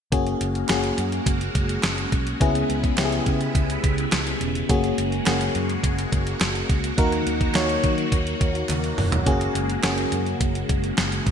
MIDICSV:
0, 0, Header, 1, 5, 480
1, 0, Start_track
1, 0, Tempo, 571429
1, 102, Time_signature, 4, 2, 24, 8
1, 9502, End_track
2, 0, Start_track
2, 0, Title_t, "FM electric piano"
2, 0, Program_c, 0, 5
2, 99, Note_on_c, 0, 58, 79
2, 102, Note_on_c, 0, 61, 70
2, 106, Note_on_c, 0, 66, 73
2, 109, Note_on_c, 0, 68, 87
2, 245, Control_c, 0, 64, 127
2, 429, Note_off_c, 0, 58, 0
2, 430, Note_off_c, 0, 61, 0
2, 433, Note_off_c, 0, 66, 0
2, 434, Note_off_c, 0, 68, 0
2, 579, Note_on_c, 0, 58, 80
2, 583, Note_on_c, 0, 61, 71
2, 586, Note_on_c, 0, 66, 75
2, 589, Note_on_c, 0, 68, 92
2, 1237, Note_off_c, 0, 58, 0
2, 1239, Note_off_c, 0, 61, 0
2, 1241, Note_off_c, 0, 66, 0
2, 1242, Note_off_c, 0, 68, 0
2, 2019, Note_on_c, 0, 59, 80
2, 2023, Note_on_c, 0, 61, 74
2, 2024, Note_on_c, 0, 49, 71
2, 2026, Note_on_c, 0, 64, 75
2, 2030, Note_on_c, 0, 68, 90
2, 2033, Control_c, 0, 64, 0
2, 2175, Control_c, 0, 64, 127
2, 2349, Note_off_c, 0, 59, 0
2, 2351, Note_off_c, 0, 61, 0
2, 2353, Note_off_c, 0, 64, 0
2, 2355, Note_off_c, 0, 68, 0
2, 2498, Note_on_c, 0, 59, 85
2, 2502, Note_on_c, 0, 61, 75
2, 2505, Note_on_c, 0, 64, 72
2, 2508, Note_on_c, 0, 67, 70
2, 2560, Note_off_c, 0, 67, 0
2, 2563, Note_on_c, 0, 68, 95
2, 2710, Note_off_c, 0, 49, 0
2, 3157, Note_off_c, 0, 59, 0
2, 3159, Note_off_c, 0, 61, 0
2, 3160, Note_off_c, 0, 64, 0
2, 3189, Note_off_c, 0, 68, 0
2, 3940, Note_on_c, 0, 58, 84
2, 3943, Note_on_c, 0, 61, 73
2, 3948, Note_on_c, 0, 66, 76
2, 3951, Note_on_c, 0, 68, 85
2, 3955, Control_c, 0, 64, 0
2, 4087, Control_c, 0, 64, 127
2, 4270, Note_off_c, 0, 58, 0
2, 4271, Note_off_c, 0, 61, 0
2, 4273, Note_off_c, 0, 66, 0
2, 4275, Note_off_c, 0, 68, 0
2, 4418, Note_on_c, 0, 58, 85
2, 4422, Note_on_c, 0, 61, 76
2, 4424, Note_on_c, 0, 66, 78
2, 4428, Note_on_c, 0, 68, 90
2, 5077, Note_off_c, 0, 58, 0
2, 5079, Note_off_c, 0, 61, 0
2, 5080, Note_off_c, 0, 66, 0
2, 5082, Note_off_c, 0, 68, 0
2, 5859, Note_on_c, 0, 58, 82
2, 5862, Note_on_c, 0, 63, 75
2, 5864, Note_on_c, 0, 51, 71
2, 5866, Note_on_c, 0, 66, 77
2, 5868, Note_on_c, 0, 70, 85
2, 5872, Control_c, 0, 64, 0
2, 6008, Control_c, 0, 64, 127
2, 6189, Note_off_c, 0, 58, 0
2, 6191, Note_off_c, 0, 63, 0
2, 6193, Note_off_c, 0, 66, 0
2, 6194, Note_off_c, 0, 70, 0
2, 6339, Note_on_c, 0, 58, 82
2, 6342, Note_on_c, 0, 63, 75
2, 6347, Note_on_c, 0, 66, 76
2, 6349, Note_on_c, 0, 73, 94
2, 6550, Note_off_c, 0, 51, 0
2, 6997, Note_off_c, 0, 58, 0
2, 6999, Note_off_c, 0, 63, 0
2, 7001, Note_off_c, 0, 66, 0
2, 7002, Note_off_c, 0, 73, 0
2, 7778, Note_on_c, 0, 58, 83
2, 7782, Note_on_c, 0, 61, 74
2, 7785, Note_on_c, 0, 66, 74
2, 7789, Note_on_c, 0, 68, 90
2, 7791, Control_c, 0, 64, 0
2, 7947, Control_c, 0, 64, 127
2, 8109, Note_off_c, 0, 58, 0
2, 8111, Note_off_c, 0, 61, 0
2, 8112, Note_off_c, 0, 66, 0
2, 8114, Note_off_c, 0, 68, 0
2, 8259, Note_on_c, 0, 58, 77
2, 8262, Note_on_c, 0, 61, 76
2, 8265, Note_on_c, 0, 66, 75
2, 8269, Note_on_c, 0, 68, 91
2, 8917, Note_off_c, 0, 58, 0
2, 8919, Note_off_c, 0, 61, 0
2, 8920, Note_off_c, 0, 66, 0
2, 8922, Note_off_c, 0, 68, 0
2, 9502, End_track
3, 0, Start_track
3, 0, Title_t, "String machine"
3, 0, Program_c, 1, 50
3, 104, Note_on_c, 1, 56, 73
3, 104, Note_on_c, 1, 58, 76
3, 104, Note_on_c, 1, 66, 85
3, 105, Note_on_c, 1, 49, 80
3, 2004, Note_off_c, 1, 58, 0
3, 2004, Note_off_c, 1, 66, 0
3, 2020, Note_on_c, 1, 59, 70
3, 2022, Note_on_c, 1, 64, 87
3, 3910, Note_off_c, 1, 56, 0
3, 3922, Note_off_c, 1, 59, 0
3, 3923, Note_off_c, 1, 64, 0
3, 3941, Note_on_c, 1, 56, 75
3, 3941, Note_on_c, 1, 58, 72
3, 3942, Note_on_c, 1, 66, 93
3, 5830, Note_off_c, 1, 49, 0
3, 5843, Note_off_c, 1, 56, 0
3, 5861, Note_on_c, 1, 51, 82
3, 5861, Note_on_c, 1, 54, 71
3, 7763, Note_off_c, 1, 51, 0
3, 7763, Note_off_c, 1, 54, 0
3, 7783, Note_on_c, 1, 49, 79
3, 7783, Note_on_c, 1, 56, 74
3, 9502, Note_off_c, 1, 49, 0
3, 9502, Note_off_c, 1, 56, 0
3, 9502, Note_off_c, 1, 58, 0
3, 9502, Note_off_c, 1, 66, 0
3, 9502, End_track
4, 0, Start_track
4, 0, Title_t, "Fingered electric bass"
4, 0, Program_c, 2, 33
4, 103, Note_on_c, 2, 30, 100
4, 276, Note_off_c, 2, 30, 0
4, 343, Note_on_c, 2, 30, 91
4, 516, Note_off_c, 2, 30, 0
4, 582, Note_on_c, 2, 30, 96
4, 755, Note_off_c, 2, 30, 0
4, 822, Note_on_c, 2, 42, 85
4, 995, Note_off_c, 2, 42, 0
4, 1060, Note_on_c, 2, 30, 91
4, 1234, Note_off_c, 2, 30, 0
4, 1303, Note_on_c, 2, 30, 98
4, 1476, Note_off_c, 2, 30, 0
4, 1542, Note_on_c, 2, 30, 93
4, 1715, Note_off_c, 2, 30, 0
4, 1783, Note_on_c, 2, 35, 82
4, 1956, Note_off_c, 2, 35, 0
4, 2023, Note_on_c, 2, 37, 97
4, 2196, Note_off_c, 2, 37, 0
4, 2263, Note_on_c, 2, 37, 84
4, 2436, Note_off_c, 2, 37, 0
4, 2502, Note_on_c, 2, 37, 95
4, 2675, Note_off_c, 2, 37, 0
4, 2743, Note_on_c, 2, 49, 85
4, 2916, Note_off_c, 2, 49, 0
4, 2981, Note_on_c, 2, 37, 97
4, 3155, Note_off_c, 2, 37, 0
4, 3224, Note_on_c, 2, 37, 98
4, 3396, Note_off_c, 2, 37, 0
4, 3462, Note_on_c, 2, 37, 95
4, 3635, Note_off_c, 2, 37, 0
4, 3701, Note_on_c, 2, 28, 84
4, 3875, Note_off_c, 2, 28, 0
4, 3944, Note_on_c, 2, 30, 106
4, 4117, Note_off_c, 2, 30, 0
4, 4183, Note_on_c, 2, 30, 88
4, 4356, Note_off_c, 2, 30, 0
4, 4423, Note_on_c, 2, 30, 96
4, 4596, Note_off_c, 2, 30, 0
4, 4663, Note_on_c, 2, 42, 84
4, 4836, Note_off_c, 2, 42, 0
4, 4902, Note_on_c, 2, 30, 94
4, 5075, Note_off_c, 2, 30, 0
4, 5144, Note_on_c, 2, 30, 90
4, 5316, Note_off_c, 2, 30, 0
4, 5382, Note_on_c, 2, 30, 96
4, 5555, Note_off_c, 2, 30, 0
4, 5623, Note_on_c, 2, 37, 87
4, 5796, Note_off_c, 2, 37, 0
4, 5864, Note_on_c, 2, 39, 105
4, 6036, Note_off_c, 2, 39, 0
4, 6101, Note_on_c, 2, 39, 85
4, 6274, Note_off_c, 2, 39, 0
4, 6340, Note_on_c, 2, 39, 95
4, 6514, Note_off_c, 2, 39, 0
4, 6583, Note_on_c, 2, 51, 89
4, 6756, Note_off_c, 2, 51, 0
4, 6821, Note_on_c, 2, 39, 90
4, 6994, Note_off_c, 2, 39, 0
4, 7064, Note_on_c, 2, 39, 86
4, 7236, Note_off_c, 2, 39, 0
4, 7300, Note_on_c, 2, 39, 95
4, 7474, Note_off_c, 2, 39, 0
4, 7540, Note_on_c, 2, 28, 80
4, 7714, Note_off_c, 2, 28, 0
4, 7784, Note_on_c, 2, 30, 107
4, 7956, Note_off_c, 2, 30, 0
4, 8021, Note_on_c, 2, 30, 88
4, 8194, Note_off_c, 2, 30, 0
4, 8262, Note_on_c, 2, 30, 92
4, 8435, Note_off_c, 2, 30, 0
4, 8502, Note_on_c, 2, 42, 88
4, 8675, Note_off_c, 2, 42, 0
4, 8741, Note_on_c, 2, 30, 87
4, 8914, Note_off_c, 2, 30, 0
4, 8983, Note_on_c, 2, 30, 87
4, 9156, Note_off_c, 2, 30, 0
4, 9223, Note_on_c, 2, 30, 98
4, 9396, Note_off_c, 2, 30, 0
4, 9463, Note_on_c, 2, 35, 78
4, 9502, Note_off_c, 2, 35, 0
4, 9502, End_track
5, 0, Start_track
5, 0, Title_t, "Drums"
5, 103, Note_on_c, 9, 36, 108
5, 104, Note_on_c, 9, 42, 85
5, 187, Note_off_c, 9, 36, 0
5, 188, Note_off_c, 9, 42, 0
5, 223, Note_on_c, 9, 42, 48
5, 307, Note_off_c, 9, 42, 0
5, 343, Note_on_c, 9, 42, 70
5, 427, Note_off_c, 9, 42, 0
5, 464, Note_on_c, 9, 42, 40
5, 548, Note_off_c, 9, 42, 0
5, 578, Note_on_c, 9, 39, 89
5, 583, Note_on_c, 9, 38, 105
5, 583, Note_on_c, 9, 42, 78
5, 662, Note_off_c, 9, 39, 0
5, 667, Note_off_c, 9, 38, 0
5, 667, Note_off_c, 9, 42, 0
5, 702, Note_on_c, 9, 42, 53
5, 786, Note_off_c, 9, 42, 0
5, 822, Note_on_c, 9, 42, 70
5, 906, Note_off_c, 9, 42, 0
5, 943, Note_on_c, 9, 42, 45
5, 1027, Note_off_c, 9, 42, 0
5, 1061, Note_on_c, 9, 36, 96
5, 1063, Note_on_c, 9, 42, 95
5, 1145, Note_off_c, 9, 36, 0
5, 1147, Note_off_c, 9, 42, 0
5, 1185, Note_on_c, 9, 42, 56
5, 1269, Note_off_c, 9, 42, 0
5, 1303, Note_on_c, 9, 36, 92
5, 1303, Note_on_c, 9, 42, 74
5, 1387, Note_off_c, 9, 36, 0
5, 1387, Note_off_c, 9, 42, 0
5, 1422, Note_on_c, 9, 42, 49
5, 1506, Note_off_c, 9, 42, 0
5, 1540, Note_on_c, 9, 39, 72
5, 1541, Note_on_c, 9, 38, 111
5, 1542, Note_on_c, 9, 42, 86
5, 1624, Note_off_c, 9, 39, 0
5, 1625, Note_off_c, 9, 38, 0
5, 1626, Note_off_c, 9, 42, 0
5, 1664, Note_on_c, 9, 42, 46
5, 1748, Note_off_c, 9, 42, 0
5, 1783, Note_on_c, 9, 36, 85
5, 1783, Note_on_c, 9, 42, 66
5, 1867, Note_off_c, 9, 36, 0
5, 1867, Note_off_c, 9, 42, 0
5, 1904, Note_on_c, 9, 42, 59
5, 1988, Note_off_c, 9, 42, 0
5, 2023, Note_on_c, 9, 36, 107
5, 2024, Note_on_c, 9, 42, 84
5, 2107, Note_off_c, 9, 36, 0
5, 2108, Note_off_c, 9, 42, 0
5, 2144, Note_on_c, 9, 42, 51
5, 2228, Note_off_c, 9, 42, 0
5, 2266, Note_on_c, 9, 42, 72
5, 2350, Note_off_c, 9, 42, 0
5, 2382, Note_on_c, 9, 36, 84
5, 2383, Note_on_c, 9, 42, 40
5, 2466, Note_off_c, 9, 36, 0
5, 2467, Note_off_c, 9, 42, 0
5, 2499, Note_on_c, 9, 39, 89
5, 2503, Note_on_c, 9, 38, 110
5, 2504, Note_on_c, 9, 42, 83
5, 2583, Note_off_c, 9, 39, 0
5, 2587, Note_off_c, 9, 38, 0
5, 2588, Note_off_c, 9, 42, 0
5, 2623, Note_on_c, 9, 42, 54
5, 2707, Note_off_c, 9, 42, 0
5, 2741, Note_on_c, 9, 42, 70
5, 2743, Note_on_c, 9, 36, 80
5, 2825, Note_off_c, 9, 42, 0
5, 2827, Note_off_c, 9, 36, 0
5, 2861, Note_on_c, 9, 42, 43
5, 2945, Note_off_c, 9, 42, 0
5, 2981, Note_on_c, 9, 36, 93
5, 2983, Note_on_c, 9, 42, 90
5, 3065, Note_off_c, 9, 36, 0
5, 3067, Note_off_c, 9, 42, 0
5, 3106, Note_on_c, 9, 42, 55
5, 3190, Note_off_c, 9, 42, 0
5, 3223, Note_on_c, 9, 36, 91
5, 3224, Note_on_c, 9, 42, 76
5, 3307, Note_off_c, 9, 36, 0
5, 3308, Note_off_c, 9, 42, 0
5, 3344, Note_on_c, 9, 42, 50
5, 3428, Note_off_c, 9, 42, 0
5, 3461, Note_on_c, 9, 39, 73
5, 3462, Note_on_c, 9, 38, 106
5, 3464, Note_on_c, 9, 42, 90
5, 3545, Note_off_c, 9, 39, 0
5, 3546, Note_off_c, 9, 38, 0
5, 3548, Note_off_c, 9, 42, 0
5, 3585, Note_on_c, 9, 42, 44
5, 3669, Note_off_c, 9, 42, 0
5, 3704, Note_on_c, 9, 42, 69
5, 3788, Note_off_c, 9, 42, 0
5, 3825, Note_on_c, 9, 42, 59
5, 3909, Note_off_c, 9, 42, 0
5, 3943, Note_on_c, 9, 36, 110
5, 3943, Note_on_c, 9, 42, 86
5, 4027, Note_off_c, 9, 36, 0
5, 4027, Note_off_c, 9, 42, 0
5, 4063, Note_on_c, 9, 42, 47
5, 4147, Note_off_c, 9, 42, 0
5, 4185, Note_on_c, 9, 42, 73
5, 4269, Note_off_c, 9, 42, 0
5, 4303, Note_on_c, 9, 42, 43
5, 4387, Note_off_c, 9, 42, 0
5, 4420, Note_on_c, 9, 39, 89
5, 4423, Note_on_c, 9, 38, 101
5, 4424, Note_on_c, 9, 42, 82
5, 4504, Note_off_c, 9, 39, 0
5, 4507, Note_off_c, 9, 38, 0
5, 4508, Note_off_c, 9, 42, 0
5, 4543, Note_on_c, 9, 42, 55
5, 4627, Note_off_c, 9, 42, 0
5, 4662, Note_on_c, 9, 42, 70
5, 4746, Note_off_c, 9, 42, 0
5, 4784, Note_on_c, 9, 42, 43
5, 4868, Note_off_c, 9, 42, 0
5, 4902, Note_on_c, 9, 36, 91
5, 4905, Note_on_c, 9, 42, 93
5, 4986, Note_off_c, 9, 36, 0
5, 4989, Note_off_c, 9, 42, 0
5, 5028, Note_on_c, 9, 42, 59
5, 5112, Note_off_c, 9, 42, 0
5, 5144, Note_on_c, 9, 36, 86
5, 5145, Note_on_c, 9, 42, 72
5, 5228, Note_off_c, 9, 36, 0
5, 5229, Note_off_c, 9, 42, 0
5, 5264, Note_on_c, 9, 42, 50
5, 5348, Note_off_c, 9, 42, 0
5, 5381, Note_on_c, 9, 39, 77
5, 5384, Note_on_c, 9, 38, 110
5, 5386, Note_on_c, 9, 42, 90
5, 5465, Note_off_c, 9, 39, 0
5, 5468, Note_off_c, 9, 38, 0
5, 5470, Note_off_c, 9, 42, 0
5, 5505, Note_on_c, 9, 42, 45
5, 5589, Note_off_c, 9, 42, 0
5, 5624, Note_on_c, 9, 36, 84
5, 5625, Note_on_c, 9, 42, 63
5, 5708, Note_off_c, 9, 36, 0
5, 5709, Note_off_c, 9, 42, 0
5, 5745, Note_on_c, 9, 42, 61
5, 5829, Note_off_c, 9, 42, 0
5, 5863, Note_on_c, 9, 36, 110
5, 5863, Note_on_c, 9, 42, 87
5, 5947, Note_off_c, 9, 36, 0
5, 5947, Note_off_c, 9, 42, 0
5, 5984, Note_on_c, 9, 42, 46
5, 6068, Note_off_c, 9, 42, 0
5, 6104, Note_on_c, 9, 42, 77
5, 6188, Note_off_c, 9, 42, 0
5, 6222, Note_on_c, 9, 36, 85
5, 6223, Note_on_c, 9, 42, 42
5, 6306, Note_off_c, 9, 36, 0
5, 6307, Note_off_c, 9, 42, 0
5, 6339, Note_on_c, 9, 39, 91
5, 6343, Note_on_c, 9, 38, 107
5, 6344, Note_on_c, 9, 42, 82
5, 6423, Note_off_c, 9, 39, 0
5, 6427, Note_off_c, 9, 38, 0
5, 6428, Note_off_c, 9, 42, 0
5, 6462, Note_on_c, 9, 42, 54
5, 6546, Note_off_c, 9, 42, 0
5, 6582, Note_on_c, 9, 42, 69
5, 6583, Note_on_c, 9, 36, 81
5, 6666, Note_off_c, 9, 42, 0
5, 6667, Note_off_c, 9, 36, 0
5, 6703, Note_on_c, 9, 42, 46
5, 6787, Note_off_c, 9, 42, 0
5, 6821, Note_on_c, 9, 36, 98
5, 6822, Note_on_c, 9, 42, 89
5, 6905, Note_off_c, 9, 36, 0
5, 6906, Note_off_c, 9, 42, 0
5, 6945, Note_on_c, 9, 42, 55
5, 7029, Note_off_c, 9, 42, 0
5, 7063, Note_on_c, 9, 36, 86
5, 7064, Note_on_c, 9, 42, 75
5, 7147, Note_off_c, 9, 36, 0
5, 7148, Note_off_c, 9, 42, 0
5, 7184, Note_on_c, 9, 42, 50
5, 7268, Note_off_c, 9, 42, 0
5, 7302, Note_on_c, 9, 39, 73
5, 7304, Note_on_c, 9, 48, 50
5, 7305, Note_on_c, 9, 42, 91
5, 7386, Note_off_c, 9, 39, 0
5, 7388, Note_off_c, 9, 48, 0
5, 7389, Note_off_c, 9, 42, 0
5, 7424, Note_on_c, 9, 42, 47
5, 7508, Note_off_c, 9, 42, 0
5, 7543, Note_on_c, 9, 45, 81
5, 7543, Note_on_c, 9, 46, 66
5, 7627, Note_off_c, 9, 45, 0
5, 7627, Note_off_c, 9, 46, 0
5, 7663, Note_on_c, 9, 43, 86
5, 7664, Note_on_c, 9, 42, 59
5, 7747, Note_off_c, 9, 43, 0
5, 7748, Note_off_c, 9, 42, 0
5, 7783, Note_on_c, 9, 36, 107
5, 7783, Note_on_c, 9, 42, 85
5, 7867, Note_off_c, 9, 36, 0
5, 7867, Note_off_c, 9, 42, 0
5, 7905, Note_on_c, 9, 42, 48
5, 7989, Note_off_c, 9, 42, 0
5, 8025, Note_on_c, 9, 42, 71
5, 8109, Note_off_c, 9, 42, 0
5, 8144, Note_on_c, 9, 42, 42
5, 8228, Note_off_c, 9, 42, 0
5, 8261, Note_on_c, 9, 38, 106
5, 8261, Note_on_c, 9, 39, 89
5, 8262, Note_on_c, 9, 42, 81
5, 8345, Note_off_c, 9, 38, 0
5, 8345, Note_off_c, 9, 39, 0
5, 8346, Note_off_c, 9, 42, 0
5, 8381, Note_on_c, 9, 42, 53
5, 8465, Note_off_c, 9, 42, 0
5, 8501, Note_on_c, 9, 42, 72
5, 8585, Note_off_c, 9, 42, 0
5, 8622, Note_on_c, 9, 42, 43
5, 8706, Note_off_c, 9, 42, 0
5, 8740, Note_on_c, 9, 36, 94
5, 8742, Note_on_c, 9, 42, 88
5, 8824, Note_off_c, 9, 36, 0
5, 8826, Note_off_c, 9, 42, 0
5, 8865, Note_on_c, 9, 42, 57
5, 8949, Note_off_c, 9, 42, 0
5, 8983, Note_on_c, 9, 36, 92
5, 8983, Note_on_c, 9, 42, 71
5, 9067, Note_off_c, 9, 36, 0
5, 9067, Note_off_c, 9, 42, 0
5, 9103, Note_on_c, 9, 42, 49
5, 9187, Note_off_c, 9, 42, 0
5, 9221, Note_on_c, 9, 38, 104
5, 9222, Note_on_c, 9, 39, 71
5, 9223, Note_on_c, 9, 42, 88
5, 9305, Note_off_c, 9, 38, 0
5, 9306, Note_off_c, 9, 39, 0
5, 9307, Note_off_c, 9, 42, 0
5, 9342, Note_on_c, 9, 42, 47
5, 9426, Note_off_c, 9, 42, 0
5, 9463, Note_on_c, 9, 36, 86
5, 9463, Note_on_c, 9, 42, 65
5, 9502, Note_off_c, 9, 36, 0
5, 9502, Note_off_c, 9, 42, 0
5, 9502, End_track
0, 0, End_of_file